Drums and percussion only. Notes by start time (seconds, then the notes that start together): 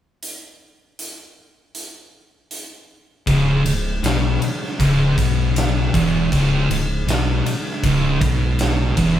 0.23 closed hi-hat
0.99 closed hi-hat
1.75 closed hi-hat
2.51 closed hi-hat
3.27 kick, ride
3.66 ride
4.04 snare, ride
4.42 ride
4.63 snare
4.80 kick, ride
5.18 kick, ride
5.56 snare, ride
5.94 kick, ride
6.32 kick, ride
6.71 ride
7.08 snare, ride
7.46 ride
7.67 snare
7.84 kick, ride
8.21 kick, ride
8.59 snare, ride
8.97 kick, ride